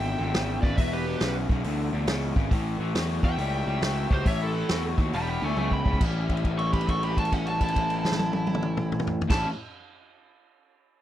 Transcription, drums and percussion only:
0.34 snare loud
0.34 open hi-hat medium
0.63 kick medium
0.78 kick loud
0.78 open hi-hat medium
1.20 snare loud
1.20 open hi-hat medium
1.49 kick medium
1.64 open hi-hat medium
2.07 snare loud
2.07 open hi-hat medium
2.36 kick medium
2.51 kick loud
2.51 open hi-hat medium
2.95 snare loud
2.95 open hi-hat medium
3.23 kick medium
3.38 open hi-hat soft
3.82 snare loud
3.82 open hi-hat medium
4.11 kick medium
4.26 kick loud
4.26 open hi-hat medium
4.69 snare loud
4.69 open hi-hat soft
4.98 kick medium
5.13 open hi-hat medium
5.57 high tom medium
5.71 kick medium
5.86 kick medium
5.93 kick medium
6.01 kick loud
6.01 crash medium
6.29 kick medium
6.29 crash soft
6.37 crash soft
6.45 kick medium
6.45 crash soft
6.59 crash soft
6.73 kick medium
6.73 crash soft
6.81 crash soft
6.88 kick medium
6.88 crash soft
7.03 crash soft
7.17 kick medium
7.17 crash soft
7.25 crash soft
7.32 kick medium
7.32 crash soft
7.47 crash soft
7.61 kick medium
7.61 crash medium
7.68 crash soft
7.76 kick medium
7.76 crash medium
7.90 crash medium
8.05 snare medium
8.12 snare medium
8.19 high tom medium
8.33 high tom medium
8.47 high tom medium
8.55 mid tom medium
8.63 mid tom medium
8.77 mid tom loud
8.92 mid tom medium
9.00 mid tom loud
9.07 floor tom loud
9.21 floor tom loud
9.30 kick loud
9.30 snare medium
9.30 crash medium

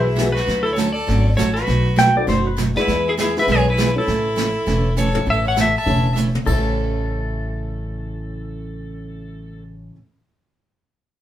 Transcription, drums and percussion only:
0.18 snare medium
0.18 hi-hat pedal medium
0.36 snare soft
0.48 brush sweep soft
0.48 snare soft
0.78 snare medium
0.78 hi-hat pedal medium
1.08 brush sweep soft
1.08 snare soft
1.38 snare medium
1.38 hi-hat pedal medium
1.56 snare soft
1.68 brush sweep soft
1.68 snare soft
1.98 snare medium
1.98 hi-hat pedal medium
2.28 brush sweep soft
2.28 snare soft
2.58 snare medium
2.58 hi-hat pedal medium
2.76 snare soft
2.88 brush sweep soft
2.88 snare soft
3.18 snare medium
3.18 hi-hat pedal medium
3.36 snare soft
3.48 brush sweep soft
3.48 snare soft
3.78 snare medium
3.78 hi-hat pedal medium
4.08 brush sweep soft
4.08 snare soft
4.37 snare medium
4.37 hi-hat pedal medium
4.67 brush sweep medium
4.67 snare soft
4.97 hi-hat pedal medium
5.15 floor tom medium
5.27 brush sweep soft
5.57 snare medium
5.57 hi-hat pedal medium
5.87 brush sweep soft
6.17 hi-hat pedal medium
6.17 mid tom soft
6.35 mid tom medium
6.47 kick medium
6.47 crash medium

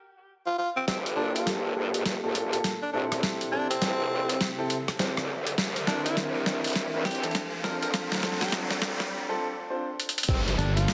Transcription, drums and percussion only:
0.88 snare soft
0.88 closed hi-hat medium
1.06 closed hi-hat soft
1.36 closed hi-hat medium
1.47 snare medium
1.47 closed hi-hat medium
1.94 closed hi-hat medium
2.06 snare medium
2.06 closed hi-hat medium
2.35 closed hi-hat medium
2.53 closed hi-hat medium
2.64 snare medium
2.64 closed hi-hat medium
3.12 cross-stick soft
3.12 closed hi-hat medium
3.23 snare medium
3.23 closed hi-hat medium
3.41 closed hi-hat soft
3.71 closed hi-hat medium
3.82 snare medium
3.82 closed hi-hat medium
4.29 closed hi-hat medium
4.41 snare medium
4.41 closed hi-hat medium
4.70 closed hi-hat medium
4.88 cross-stick medium
4.88 closed hi-hat medium
4.99 snare medium
4.99 closed hi-hat medium
5.17 cross-stick soft
5.47 closed hi-hat medium
5.58 snare medium
5.58 closed hi-hat medium
5.76 closed hi-hat soft
5.87 snare medium
6.06 closed hi-hat medium
6.17 snare medium
6.17 closed hi-hat medium
6.46 snare medium
6.64 closed hi-hat medium
6.67 closed hi-hat soft
6.70 closed hi-hat soft
6.73 snare medium
6.73 closed hi-hat soft
6.76 closed hi-hat medium
7.05 snare medium
7.05 closed hi-hat medium
7.11 closed hi-hat medium
7.15 closed hi-hat soft
7.23 closed hi-hat medium
7.23 closed hi-hat soft
7.31 snare medium
7.31 closed hi-hat soft
7.35 closed hi-hat medium
7.64 snare medium
7.83 closed hi-hat medium
7.94 snare medium
7.94 closed hi-hat medium
8.12 snare medium
8.12 closed hi-hat soft
8.15 snare medium
8.18 snare medium
8.20 snare soft
8.23 snare medium
8.27 snare soft
8.32 snare soft
8.37 snare soft
8.41 snare medium
8.41 closed hi-hat medium
8.48 snare medium
8.52 snare loud
8.52 closed hi-hat medium
8.71 snare medium
8.82 snare loud
9.00 snare medium
10.00 closed hi-hat medium
10.09 closed hi-hat medium
10.18 closed hi-hat medium
10.23 closed hi-hat medium
10.29 kick loud
10.29 closed hi-hat medium
10.29 crash loud
10.48 closed hi-hat soft
10.59 closed hi-hat soft
10.77 closed hi-hat medium
10.88 snare loud
10.88 closed hi-hat medium

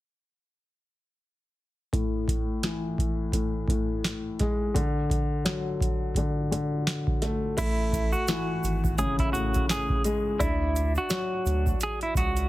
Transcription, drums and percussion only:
1.93 kick loud
1.93 closed hi-hat medium
2.28 kick medium
2.28 closed hi-hat medium
2.63 snare loud
2.63 closed hi-hat medium
2.98 kick medium
2.98 closed hi-hat medium
3.32 kick medium
3.32 closed hi-hat medium
3.68 kick medium
3.68 closed hi-hat medium
4.04 snare loud
4.04 closed hi-hat medium
4.39 kick medium
4.39 snare soft
4.39 closed hi-hat medium
4.75 kick loud
4.75 closed hi-hat medium
5.10 kick loud
5.10 closed hi-hat medium
5.46 snare loud
5.46 closed hi-hat medium
5.81 kick medium
5.81 closed hi-hat medium
6.15 kick medium
6.15 closed hi-hat medium
6.52 closed hi-hat medium
6.87 snare loud
6.87 closed hi-hat medium
7.07 kick medium
7.22 snare soft
7.22 closed hi-hat medium
7.58 kick loud
7.58 closed hi-hat medium
7.58 crash loud
7.58 shaker medium
7.92 kick loud
7.92 closed hi-hat medium
7.92 shaker medium
8.13 shaker soft
8.28 snare loud
8.28 closed hi-hat loud
8.28 shaker medium
8.64 closed hi-hat medium
8.64 shaker medium
8.84 kick medium
8.84 shaker soft
8.98 closed hi-hat loud
8.98 shaker medium
9.19 kick loud
9.19 closed hi-hat medium
9.34 closed hi-hat medium
9.34 shaker medium
9.54 kick medium
9.54 closed hi-hat medium
9.54 shaker soft
9.69 snare loud
9.69 closed hi-hat loud
9.69 shaker medium
9.89 kick medium
10.04 closed hi-hat medium
10.04 shaker medium
10.40 kick loud
10.40 closed hi-hat medium
10.40 shaker medium
10.76 closed hi-hat medium
10.76 shaker medium
10.95 shaker soft
11.10 snare loud
11.10 closed hi-hat loud
11.10 shaker medium
11.46 closed hi-hat medium
11.46 shaker medium
11.66 kick medium
11.66 shaker medium
11.81 closed hi-hat medium
11.81 shaker medium
12.01 closed hi-hat medium
12.15 kick loud
12.15 closed hi-hat medium
12.15 shaker medium
12.36 closed hi-hat medium
12.36 shaker soft

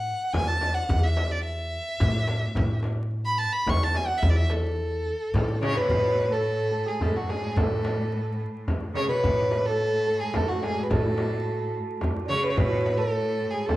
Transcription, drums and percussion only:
0.34 tombak dum medium
0.34 frame drum medium
0.61 tombak tek medium
0.61 frame drum medium
0.89 tombak dum medium
0.89 frame drum medium
1.17 tombak tek medium
1.17 frame drum medium
1.31 tombak ka soft
2.00 frame drum medium
2.00 tombak dum medium
2.28 tombak tek medium
2.28 frame drum medium
2.55 tombak dum medium
2.55 frame drum medium
2.83 tombak tek medium
2.83 frame drum medium
2.97 tombak ka soft
3.67 tombak dum medium
3.67 frame drum medium
3.94 tombak tek medium
3.94 frame drum medium
4.23 tombak dum medium
4.23 frame drum medium
4.50 tombak tek medium
4.50 frame drum medium
4.79 tombak ka soft
5.06 tombak ka soft
5.34 tombak tek medium
5.34 frame drum medium
5.48 tombak ka medium
5.63 tombak tek medium
5.63 frame drum medium
5.75 tombak ka medium
5.89 tombak dum medium
5.89 frame drum medium
6.19 frame drum medium
6.45 tombak ka soft
6.73 tombak ka soft
7.01 tombak dum loud
7.01 frame drum medium
7.29 tombak tek medium
7.29 frame drum medium
7.57 tombak dum medium
7.57 frame drum medium
7.85 tombak tek medium
7.85 frame drum medium
8.13 tombak ka soft
8.40 tombak ka soft
8.68 tombak dum medium
8.68 frame drum medium
8.95 tombak tek medium
8.95 frame drum medium
9.23 frame drum medium
9.23 tombak dum medium
9.51 frame drum medium
9.80 tombak ka soft
10.08 tombak ka soft
10.34 frame drum medium
10.34 tombak dum medium
10.62 tombak tek medium
10.62 frame drum medium
10.90 tombak dum medium
10.90 frame drum medium
11.18 tombak tek medium
11.18 frame drum medium
11.47 tombak ka soft
11.75 tombak ka soft
12.01 frame drum medium
12.01 tombak dum medium
12.30 tombak tek medium
12.30 frame drum medium
12.57 frame drum medium
12.57 tombak dum medium
12.86 tombak tek medium
12.86 frame drum medium
13.14 tombak ka soft
13.42 tombak ka soft
13.69 frame drum medium
13.69 tombak dum medium

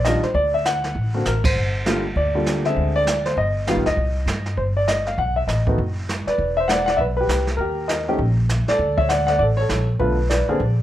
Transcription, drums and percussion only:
0.05 snare medium
0.05 hi-hat pedal medium
0.23 snare soft
0.35 brush sweep soft
0.35 kick soft
0.65 snare soft
0.65 hi-hat pedal soft
0.84 snare soft
0.95 brush sweep soft
0.95 kick soft
1.25 snare soft
1.25 hi-hat pedal medium
1.44 kick medium
1.44 ride medium
1.56 brush sweep soft
1.86 snare medium
1.86 hi-hat pedal medium
2.16 brush sweep soft
2.16 kick soft
2.46 snare soft
2.46 hi-hat pedal soft
2.65 snare soft
2.76 brush sweep soft
2.76 kick soft
3.07 snare medium
3.07 hi-hat pedal medium
3.25 snare soft
3.37 brush sweep soft
3.37 kick soft
3.67 snare soft
3.67 hi-hat pedal soft
3.86 snare soft
3.97 brush sweep soft
3.97 kick soft
4.27 snare medium
4.27 hi-hat pedal soft
4.46 snare soft
4.57 brush sweep soft
4.57 kick soft
4.88 snare medium
4.88 hi-hat pedal soft
5.06 snare soft
5.18 brush sweep soft
5.18 kick soft
5.48 snare soft
5.48 hi-hat pedal medium
5.67 kick soft
5.79 brush sweep soft
5.79 kick soft
6.09 snare soft
6.09 hi-hat pedal soft
6.27 snare soft
6.39 brush sweep soft
6.39 kick soft
6.69 snare medium
6.69 hi-hat pedal medium
6.87 snare soft
6.99 brush sweep soft
6.99 kick soft
7.29 snare medium
7.29 hi-hat pedal medium
7.47 snare soft
7.59 brush sweep soft
7.59 kick soft
7.89 snare medium
7.89 hi-hat pedal medium
8.19 brush sweep soft
8.19 kick soft
8.49 snare medium
8.49 hi-hat pedal soft
8.68 snare soft
8.79 brush sweep soft
8.79 kick soft
8.98 kick medium
9.09 snare medium
9.09 hi-hat pedal soft
9.28 snare soft
9.39 brush sweep soft
9.39 kick soft
9.69 snare medium
9.69 hi-hat pedal soft
10.00 brush sweep medium
10.00 kick soft
10.30 snare medium
10.30 hi-hat pedal medium
10.60 brush sweep soft
10.60 kick soft

